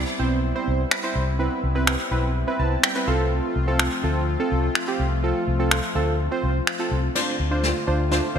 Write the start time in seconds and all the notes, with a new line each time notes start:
Already playing: G3 B3 C4 E4
0.19 B1 C4 E4 C5
0.55 C4 E4 C5
0.68 C2
0.91 finger snap
1.03 C4 E4 C5
1.15 C2
1.39 C4 E4 B4
1.63 C2
1.75 C4 E4 B4
1.87 finger snap
2.11 B1 C4 E4 B4
2.47 C4 E4 B4
2.59 C2 A5
2.83 G5, finger snap
2.95 C4 E4 B4
3.07 C2 F3 A3 C4 F4 A4 F5
3.56 C2
3.67 C4 F4 A4
3.79 finger snap
4.03 D2 C4 F4 A4
4.39 C4 F4 A4
4.52 C2
4.75 finger snap
4.88 C4 F4 G4
4.99 C2
5.23 C4 F4 A4
5.47 C2
5.59 C4 F4 A4
5.71 finger snap
5.95 D2 C4 F4 A4
6.31 C4 F4 C5
6.43 C2
6.67 finger snap
6.79 C4 F4 A4
6.91 C2
7.15 D3 A3 C4 D4 F4 C5, snare, crash
7.40 D2
7.51 D4 F4 C5
7.63 snare
7.87 D2 D4 F4 C5
8.11 D4 F4 C5, snare
8.35 D2 D4 F4 C5